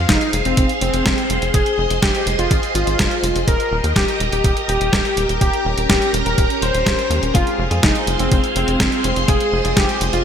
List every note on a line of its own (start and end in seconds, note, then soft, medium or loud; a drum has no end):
0.00 3.44 G#4 medium
0.00 3.44 C5 medium
0.00 1.52 F5 medium
0.00 3.44 C6 medium
0.09 0.19 F1 loud
0.09 0.31 D#4 medium
0.09 kick loud
0.09 snare loud
0.09 closed hi-hat medium
0.21 closed hi-hat soft
0.33 0.43 F1 medium
0.33 closed hi-hat medium
0.45 0.55 F1 medium
0.45 0.67 C4 medium
0.45 closed hi-hat soft
0.57 0.67 F1 loud
0.57 kick loud
0.57 closed hi-hat medium
0.69 closed hi-hat soft
0.81 0.91 F1 medium
0.81 1.44 C4 loud
0.81 closed hi-hat medium
0.93 1.03 F1 medium
0.93 closed hi-hat soft
1.06 1.15 F1 loud
1.06 kick loud
1.06 snare loud
1.06 closed hi-hat loud
1.18 closed hi-hat soft
1.30 1.40 F1 medium
1.30 closed hi-hat medium
1.42 1.52 F1 medium
1.42 closed hi-hat soft
1.54 1.64 F1 loud
1.54 1.83 G#4 loud
1.54 3.46 D#5 medium
1.54 kick loud
1.54 closed hi-hat medium
1.66 closed hi-hat soft
1.78 1.88 F1 medium
1.90 2.00 F1 medium
1.90 closed hi-hat soft
2.02 2.12 F1 loud
2.02 2.24 G4 medium
2.02 kick loud
2.02 snare loud
2.02 closed hi-hat medium
2.15 closed hi-hat soft
2.26 2.36 F1 loud
2.26 closed hi-hat medium
2.38 2.48 F1 medium
2.38 2.61 F4 medium
2.38 closed hi-hat soft
2.51 2.61 G#1 loud
2.51 kick loud
2.51 closed hi-hat medium
2.63 closed hi-hat soft
2.75 2.85 G#1 loud
2.75 3.38 F4 loud
2.75 closed hi-hat medium
2.87 2.97 G#1 medium
2.87 closed hi-hat soft
2.99 3.09 F1 loud
2.99 kick loud
2.99 snare loud
2.99 closed hi-hat medium
3.11 closed hi-hat soft
3.23 3.33 F1 medium
3.23 closed hi-hat medium
3.35 3.45 F1 medium
3.35 closed hi-hat soft
3.48 3.57 D#1 loud
3.48 7.31 G4 medium
3.48 3.77 A#4 loud
3.48 7.31 A#4 medium
3.48 5.39 D#5 medium
3.48 7.31 A#5 medium
3.48 kick loud
3.48 closed hi-hat medium
3.60 closed hi-hat soft
3.71 3.81 D#1 medium
3.84 3.94 D#2 medium
3.84 closed hi-hat soft
3.96 4.06 D#1 loud
3.96 4.18 G4 loud
3.96 kick loud
3.96 snare loud
3.96 closed hi-hat medium
4.08 closed hi-hat soft
4.20 4.30 D#1 medium
4.20 closed hi-hat medium
4.32 4.42 D#1 medium
4.32 4.54 G4 medium
4.32 closed hi-hat soft
4.44 4.54 D#1 loud
4.44 kick loud
4.44 closed hi-hat medium
4.57 closed hi-hat soft
4.68 4.78 D#1 loud
4.68 5.32 G4 medium
4.68 closed hi-hat medium
4.80 4.90 D#1 medium
4.80 closed hi-hat soft
4.93 5.03 D#1 loud
4.93 kick loud
4.93 snare loud
4.93 closed hi-hat medium
5.05 closed hi-hat soft
5.17 5.27 D#1 medium
5.17 closed hi-hat medium
5.29 5.39 D#1 medium
5.29 closed hi-hat soft
5.41 5.51 D#1 loud
5.41 7.33 C#4 medium
5.41 5.70 G4 loud
5.41 kick loud
5.41 closed hi-hat medium
5.53 closed hi-hat soft
5.65 5.75 D#1 loud
5.77 5.87 D#1 medium
5.77 closed hi-hat soft
5.89 5.99 D#1 loud
5.89 6.11 G4 medium
5.89 kick loud
5.89 snare loud
5.89 closed hi-hat medium
6.02 closed hi-hat soft
6.13 6.23 D#1 loud
6.13 closed hi-hat medium
6.26 6.35 D#1 medium
6.26 6.48 A#4 medium
6.26 closed hi-hat soft
6.38 6.48 D#1 loud
6.38 kick loud
6.38 closed hi-hat medium
6.50 closed hi-hat soft
6.62 6.72 D#1 medium
6.62 7.25 C5 loud
6.62 closed hi-hat medium
6.74 6.84 D#1 medium
6.74 closed hi-hat soft
6.86 6.96 D#1 loud
6.86 kick loud
6.86 snare loud
6.86 closed hi-hat medium
6.99 closed hi-hat soft
7.10 7.20 D#2 medium
7.10 closed hi-hat medium
7.22 7.32 D#1 medium
7.22 closed hi-hat soft
7.34 7.44 F1 loud
7.34 7.68 G#3 medium
7.34 7.68 C4 medium
7.34 7.64 F4 loud
7.34 7.68 F4 medium
7.34 10.24 G#4 medium
7.34 7.68 G#4 medium
7.34 10.24 C5 medium
7.34 9.26 F5 medium
7.34 10.24 C6 medium
7.34 kick loud
7.34 closed hi-hat medium
7.47 closed hi-hat soft
7.59 7.69 F1 loud
7.71 7.81 F2 medium
7.71 9.25 G#3 medium
7.71 9.25 C4 medium
7.71 9.25 F4 medium
7.71 9.25 G#4 medium
7.71 closed hi-hat soft
7.83 7.93 F1 loud
7.83 8.05 D#4 medium
7.83 kick loud
7.83 snare loud
7.83 closed hi-hat medium
7.95 closed hi-hat soft
8.07 8.17 F1 loud
8.07 closed hi-hat medium
8.19 8.29 F1 medium
8.19 8.41 C4 medium
8.19 closed hi-hat soft
8.31 8.41 F1 loud
8.31 kick loud
8.31 closed hi-hat medium
8.44 closed hi-hat soft
8.56 8.65 F1 loud
8.56 9.19 C4 medium
8.56 closed hi-hat medium
8.68 8.78 F1 medium
8.68 closed hi-hat soft
8.80 8.90 F1 loud
8.80 kick loud
8.80 snare loud
8.80 closed hi-hat medium
8.92 closed hi-hat soft
9.04 9.14 F1 loud
9.04 closed hi-hat medium
9.16 9.26 F1 medium
9.16 closed hi-hat soft
9.28 9.38 F1 loud
9.28 9.62 G#3 medium
9.28 9.62 C4 medium
9.28 9.62 F4 medium
9.28 9.58 G#4 loud
9.28 9.62 G#4 medium
9.28 10.24 D#5 medium
9.28 kick loud
9.28 closed hi-hat medium
9.40 closed hi-hat soft
9.52 9.62 F1 loud
9.64 9.74 F1 medium
9.64 10.24 G#3 medium
9.64 10.24 C4 medium
9.64 10.24 F4 medium
9.64 10.24 G#4 medium
9.64 closed hi-hat soft
9.77 9.86 F1 loud
9.77 9.99 G4 medium
9.77 kick loud
9.77 snare loud
9.77 closed hi-hat medium
9.89 closed hi-hat soft
10.01 10.11 F1 loud
10.01 closed hi-hat medium
10.13 10.23 F1 medium
10.13 10.24 F4 medium
10.13 closed hi-hat soft